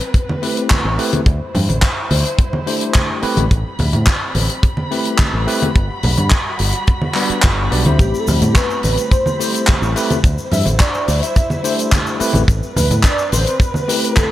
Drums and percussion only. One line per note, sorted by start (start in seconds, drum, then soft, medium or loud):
0.01 closed hi-hat medium
0.14 kick loud
0.14 closed hi-hat medium
0.29 high conga medium
0.43 open hi-hat loud
0.57 closed hi-hat medium
0.70 kick loud
0.70 clap loud
0.70 closed hi-hat medium
0.70 high conga medium
0.99 open hi-hat loud
1.13 closed hi-hat medium
1.13 high conga medium
1.26 kick loud
1.26 closed hi-hat medium
1.55 open hi-hat loud
1.55 low conga medium
1.69 closed hi-hat medium
1.69 high conga medium
1.82 kick loud
1.82 clap loud
1.82 closed hi-hat medium
2.10 open hi-hat loud
2.10 high conga medium
2.25 closed hi-hat medium
2.39 kick loud
2.39 closed hi-hat medium
2.53 high conga medium
2.67 open hi-hat loud
2.81 closed hi-hat medium
2.94 kick loud
2.94 clap loud
2.94 closed hi-hat medium
2.94 high conga medium
3.22 open hi-hat medium
3.37 closed hi-hat medium
3.37 high conga loud
3.51 kick loud
3.51 closed hi-hat medium
3.79 open hi-hat loud
3.79 low conga medium
3.93 closed hi-hat medium
3.93 high conga medium
4.07 kick loud
4.07 clap loud
4.07 closed hi-hat medium
4.35 open hi-hat loud
4.35 high conga medium
4.50 closed hi-hat medium
4.63 kick loud
4.63 closed hi-hat medium
4.77 high conga medium
4.91 open hi-hat loud
5.05 closed hi-hat medium
5.18 kick loud
5.18 clap loud
5.18 closed hi-hat medium
5.18 high conga medium
5.48 open hi-hat loud
5.62 closed hi-hat medium
5.62 high conga medium
5.75 kick loud
5.75 closed hi-hat medium
6.03 open hi-hat loud
6.03 low conga medium
6.17 closed hi-hat medium
6.17 high conga medium
6.30 kick loud
6.30 clap loud
6.30 closed hi-hat medium
6.59 open hi-hat loud
6.72 closed hi-hat medium
6.87 kick loud
6.87 closed hi-hat medium
7.01 high conga medium
7.14 clap medium
7.14 open hi-hat loud
7.30 closed hi-hat medium
7.42 kick loud
7.42 clap loud
7.42 closed hi-hat medium
7.42 high conga medium
7.72 open hi-hat loud
7.84 closed hi-hat medium
7.84 high conga medium
7.99 kick loud
7.99 closed hi-hat medium
7.99 shaker medium
8.14 shaker soft
8.27 open hi-hat loud
8.27 low conga medium
8.27 shaker medium
8.42 closed hi-hat medium
8.42 high conga medium
8.42 shaker soft
8.55 kick loud
8.55 clap loud
8.55 closed hi-hat medium
8.55 shaker medium
8.70 shaker soft
8.83 open hi-hat loud
8.83 high conga medium
8.83 shaker medium
8.97 closed hi-hat medium
8.97 shaker soft
9.11 kick loud
9.11 closed hi-hat medium
9.11 shaker medium
9.26 high conga medium
9.26 shaker soft
9.40 open hi-hat loud
9.40 shaker medium
9.54 closed hi-hat medium
9.54 shaker medium
9.67 kick loud
9.67 clap loud
9.67 closed hi-hat medium
9.67 high conga medium
9.67 shaker medium
9.83 shaker soft
9.96 open hi-hat medium
9.96 shaker medium
10.10 closed hi-hat medium
10.10 high conga medium
10.10 shaker medium
10.24 kick loud
10.24 closed hi-hat medium
10.24 shaker medium
10.38 shaker soft
10.51 open hi-hat loud
10.51 low conga medium
10.51 shaker medium
10.66 closed hi-hat medium
10.66 high conga medium
10.66 shaker medium
10.80 kick loud
10.80 clap loud
10.80 closed hi-hat medium
10.80 shaker medium
10.94 shaker soft
11.08 open hi-hat loud
11.08 shaker medium
11.23 closed hi-hat medium
11.23 shaker medium
11.36 kick loud
11.36 closed hi-hat medium
11.36 shaker medium
11.50 high conga medium
11.50 shaker soft
11.64 open hi-hat loud
11.64 shaker medium
11.79 closed hi-hat medium
11.79 shaker medium
11.92 kick loud
11.92 clap loud
11.92 closed hi-hat medium
11.92 high conga medium
11.92 shaker medium
12.07 shaker soft
12.20 open hi-hat loud
12.20 shaker medium
12.33 closed hi-hat medium
12.33 high conga medium
12.33 shaker medium
12.48 kick loud
12.48 closed hi-hat medium
12.48 shaker medium
12.63 shaker soft
12.76 open hi-hat loud
12.76 low conga medium
12.76 shaker medium
12.91 closed hi-hat medium
12.91 high conga medium
12.91 shaker medium
13.03 kick loud
13.03 clap loud
13.03 closed hi-hat medium
13.03 shaker medium
13.19 shaker soft
13.32 open hi-hat loud
13.32 high conga medium
13.32 shaker medium
13.47 closed hi-hat medium
13.47 shaker soft
13.60 kick loud
13.60 closed hi-hat medium
13.60 shaker medium
13.74 high conga medium
13.74 shaker soft
13.89 open hi-hat loud
13.89 shaker medium
14.04 closed hi-hat medium
14.04 shaker medium
14.16 kick loud
14.16 clap loud
14.16 closed hi-hat medium
14.16 high conga medium
14.16 shaker medium